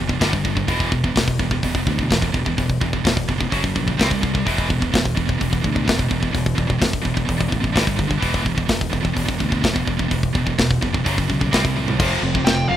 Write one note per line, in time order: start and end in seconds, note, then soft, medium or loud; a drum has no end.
0.00 0.19 F1 medium
0.09 0.20 E2 medium
0.09 0.20 B2 medium
0.09 kick medium
0.21 0.64 G1 medium
0.21 0.31 G2 medium
0.21 0.31 D3 medium
0.21 0.31 G3 medium
0.21 kick medium
0.21 snare loud
0.21 open hi-hat medium
0.33 0.44 G2 medium
0.33 0.44 D3 medium
0.33 kick medium
0.45 0.55 G2 medium
0.45 0.54 D3 medium
0.45 kick medium
0.56 0.68 G2 medium
0.56 0.68 D3 medium
0.56 kick medium
0.68 1.11 E1 medium
0.68 0.90 E2 medium
0.68 0.90 B2 loud
0.68 0.91 E3 loud
0.68 kick medium
0.68 open hi-hat soft
0.80 kick medium
0.92 1.04 E2 medium
0.92 1.03 B2 medium
0.92 kick medium
1.04 1.15 E2 medium
1.04 1.16 B2 medium
1.04 kick medium
1.16 1.59 E1 medium
1.16 1.37 E2 medium
1.16 1.37 B2 medium
1.16 kick medium
1.16 snare loud
1.16 open hi-hat medium
1.28 kick medium
1.39 1.50 E2 medium
1.39 1.50 B2 medium
1.39 kick medium
1.51 1.63 E2 medium
1.51 1.63 B2 medium
1.51 kick medium
1.63 1.84 E1 medium
1.63 1.74 E2 medium
1.63 1.74 B2 medium
1.63 kick medium
1.63 open hi-hat medium
1.75 1.87 E2 medium
1.75 1.86 B2 medium
1.75 kick medium
1.87 2.08 D2 medium
1.87 1.99 E2 medium
1.87 1.99 B2 medium
1.87 kick medium
1.99 2.10 E2 medium
1.99 2.11 B2 medium
1.99 kick medium
2.11 2.32 E1 loud
2.11 2.22 E2 medium
2.11 2.22 B2 medium
2.11 kick medium
2.11 snare loud
2.11 open hi-hat medium
2.22 2.35 E2 medium
2.22 2.35 B2 medium
2.22 kick medium
2.34 2.55 E1 medium
2.34 2.46 E2 medium
2.34 2.46 B2 medium
2.34 kick medium
2.46 2.57 E2 medium
2.46 2.57 B2 medium
2.46 kick medium
2.58 2.79 E1 loud
2.58 2.78 E2 medium
2.58 2.79 B2 medium
2.58 kick medium
2.58 open hi-hat medium
2.70 kick medium
2.81 3.02 E1 medium
2.81 2.92 E2 medium
2.81 2.92 B2 medium
2.81 kick medium
2.93 3.03 E2 medium
2.93 3.04 B2 medium
2.93 kick medium
3.04 3.25 E1 medium
3.04 3.25 E2 medium
3.04 3.26 B2 medium
3.04 kick medium
3.04 snare loud
3.04 open hi-hat medium
3.17 kick medium
3.28 3.50 F1 medium
3.28 3.40 E2 medium
3.28 3.39 B2 medium
3.28 kick medium
3.40 3.51 E2 medium
3.40 3.51 B2 medium
3.40 kick medium
3.52 3.73 F#1 medium
3.52 3.62 F#2 medium
3.52 3.62 C#3 medium
3.52 3.62 F#3 loud
3.52 kick medium
3.52 open hi-hat medium
3.63 3.75 F#2 medium
3.63 3.74 C#3 medium
3.63 kick medium
3.76 3.97 A#1 medium
3.76 3.86 F#2 medium
3.76 3.86 C#3 medium
3.76 kick medium
3.87 3.99 F#2 medium
3.87 3.98 C#3 medium
3.87 kick medium
3.98 4.42 C2 medium
3.98 4.09 C3 medium
3.98 4.09 G3 medium
3.98 4.09 C4 medium
3.98 kick medium
3.98 snare loud
3.98 open hi-hat medium
4.10 4.20 C3 medium
4.10 4.20 G3 medium
4.10 kick medium
4.21 4.33 C3 medium
4.21 4.32 G3 medium
4.21 kick medium
4.33 4.45 C3 medium
4.33 4.45 G3 medium
4.33 kick medium
4.45 4.89 E1 loud
4.45 4.67 E2 medium
4.45 4.67 B2 medium
4.45 4.68 E3 loud
4.45 kick medium
4.45 open hi-hat medium
4.58 kick medium
4.69 4.79 E2 medium
4.69 4.78 B2 medium
4.69 kick medium
4.79 4.91 E2 medium
4.79 4.90 B2 medium
4.79 kick medium
4.92 5.36 E1 medium
4.92 5.13 E2 medium
4.92 5.13 B2 medium
4.92 kick medium
4.92 snare loud
4.92 open hi-hat medium
5.05 kick medium
5.16 5.26 E2 medium
5.16 5.26 B2 medium
5.16 kick medium
5.27 5.39 E2 medium
5.27 5.39 B2 medium
5.27 kick medium
5.40 5.62 E1 loud
5.40 5.50 E2 medium
5.40 5.50 B2 medium
5.40 kick medium
5.40 open hi-hat medium
5.51 5.63 E2 medium
5.51 5.62 B2 medium
5.51 kick medium
5.63 5.85 D2 loud
5.63 5.74 E2 medium
5.63 5.74 B2 medium
5.63 kick medium
5.75 5.84 E2 medium
5.75 5.85 B2 medium
5.75 kick medium
5.86 6.09 E1 medium
5.86 5.96 E2 medium
5.86 5.96 B2 medium
5.86 kick medium
5.86 snare loud
5.86 open hi-hat medium
5.97 6.08 E2 medium
5.97 6.07 B2 medium
5.97 kick medium
6.08 6.32 E1 medium
6.08 6.21 E2 medium
6.08 6.21 B2 medium
6.08 kick medium
6.22 6.32 E2 medium
6.22 6.32 B2 medium
6.22 kick medium
6.33 6.55 E1 loud
6.33 6.54 E2 medium
6.33 6.55 B2 medium
6.33 kick medium
6.33 open hi-hat medium
6.46 kick medium
6.56 6.79 E1 medium
6.56 6.67 E2 medium
6.56 6.66 B2 medium
6.56 kick medium
6.67 6.78 E2 medium
6.67 6.78 B2 medium
6.67 kick medium
6.79 7.02 E1 medium
6.79 7.01 E2 medium
6.79 7.00 B2 medium
6.79 kick medium
6.79 snare loud
6.79 open hi-hat medium
6.93 kick medium
7.02 7.26 E1 medium
7.02 7.13 E2 medium
7.02 7.13 B2 medium
7.02 kick medium
7.14 7.25 E2 medium
7.14 7.26 B2 medium
7.14 kick medium
7.26 7.50 E1 loud
7.26 7.37 E2 medium
7.26 7.36 B2 medium
7.26 kick medium
7.26 open hi-hat medium
7.37 7.48 E2 medium
7.37 7.48 B2 medium
7.37 kick medium
7.49 7.73 A1 medium
7.49 7.60 E2 medium
7.49 7.60 B2 medium
7.49 kick medium
7.61 7.73 E2 medium
7.61 7.74 B2 medium
7.61 kick medium
7.74 8.18 G1 medium
7.74 7.85 G2 medium
7.74 7.84 D3 medium
7.74 7.85 G3 medium
7.74 kick medium
7.74 snare loud
7.74 open hi-hat medium
7.85 7.96 G2 medium
7.85 7.95 D3 medium
7.85 kick medium
7.96 8.08 G2 medium
7.96 8.07 D3 medium
7.96 kick medium
8.08 8.20 G2 medium
8.08 8.20 D3 medium
8.08 kick medium
8.20 8.66 E1 medium
8.20 8.43 E2 medium
8.20 8.42 B2 loud
8.20 8.43 E3 loud
8.20 kick medium
8.20 open hi-hat medium
8.34 kick medium
8.43 8.56 E2 medium
8.43 8.55 B2 medium
8.43 kick medium
8.56 8.68 E2 medium
8.56 8.68 B2 medium
8.56 kick medium
8.69 9.12 E1 medium
8.69 8.90 E2 medium
8.69 8.90 B2 medium
8.69 kick loud
8.69 snare loud
8.69 open hi-hat medium
8.81 kick medium
8.92 9.02 E2 medium
8.92 9.01 B2 medium
8.92 kick medium
9.03 9.12 E2 medium
9.03 9.13 B2 medium
9.03 kick medium
9.13 9.38 E1 loud
9.13 9.25 E2 medium
9.13 9.24 B2 medium
9.13 kick medium
9.13 open hi-hat medium
9.26 9.38 E2 medium
9.26 9.38 B2 medium
9.26 kick medium
9.39 9.62 D2 loud
9.39 9.50 E2 medium
9.39 9.49 B2 medium
9.39 kick medium
9.50 9.60 E2 medium
9.50 9.60 B2 medium
9.50 kick medium
9.61 9.85 E1 medium
9.61 9.73 E2 medium
9.61 9.73 B2 medium
9.61 kick medium
9.61 snare loud
9.61 open hi-hat soft
9.74 9.86 E2 medium
9.74 9.86 B2 medium
9.74 kick medium
9.87 10.09 E1 medium
9.87 9.99 E2 medium
9.87 9.99 B2 medium
9.87 kick medium
9.99 10.10 E2 medium
9.99 10.10 B2 medium
9.99 kick medium
10.11 10.32 E1 loud
10.11 10.32 E2 medium
10.11 10.32 B2 medium
10.11 kick medium
10.11 open hi-hat medium
10.23 kick medium
10.35 10.56 E1 loud
10.35 10.44 E2 medium
10.35 10.44 B2 medium
10.35 kick medium
10.45 10.57 E2 medium
10.45 10.57 B2 medium
10.45 kick medium
10.58 10.80 E1 medium
10.58 10.79 E2 medium
10.58 10.79 B2 medium
10.58 kick medium
10.58 snare loud
10.58 open hi-hat medium
10.71 kick medium
10.81 11.03 F1 medium
10.81 10.93 E2 medium
10.81 10.92 B2 medium
10.81 kick medium
10.93 11.04 E2 medium
10.93 11.05 B2 medium
10.93 kick medium
11.05 11.27 F#1 loud
11.05 11.15 F#2 medium
11.05 11.15 C#3 medium
11.05 11.15 F#3 loud
11.05 kick medium
11.05 open hi-hat medium
11.17 11.28 F#2 medium
11.17 11.27 C#3 medium
11.17 kick medium
11.29 11.50 B1 medium
11.29 11.40 F#2 medium
11.29 11.40 C#3 medium
11.29 kick medium
11.41 11.52 F#2 medium
11.41 11.52 C#3 medium
11.41 kick medium
11.52 11.96 C2 medium
11.52 11.62 C3 medium
11.52 11.62 G3 medium
11.52 11.63 C4 loud
11.52 kick medium
11.52 snare loud
11.52 open hi-hat medium
11.64 11.76 C3 medium
11.64 11.75 G3 medium
11.64 kick medium
11.76 11.88 C3 medium
11.76 11.87 G3 medium
11.76 high tom medium
11.88 11.98 C3 medium
11.88 11.99 G3 medium
11.88 floor tom medium
11.99 12.17 F1 loud
11.99 12.21 F2 medium
11.99 12.21 C3 loud
11.99 12.77 F3 medium
11.99 12.22 F3 loud
11.99 12.77 A3 loud
11.99 12.77 C4 medium
11.99 kick loud
11.99 crash loud
11.99 crash medium
12.03 12.77 F4 loud
12.23 12.40 F1 loud
12.23 12.35 F2 medium
12.23 12.34 C3 medium
12.35 12.46 F2 medium
12.35 12.46 C3 medium
12.35 kick medium
12.45 12.64 F1 medium
12.45 12.68 F2 medium
12.45 12.68 C3 medium
12.45 12.68 G5 loud
12.45 snare loud
12.45 crash medium
12.69 12.77 F1 medium
12.69 12.77 F2 medium
12.69 12.77 C3 medium
12.69 12.77 F5 medium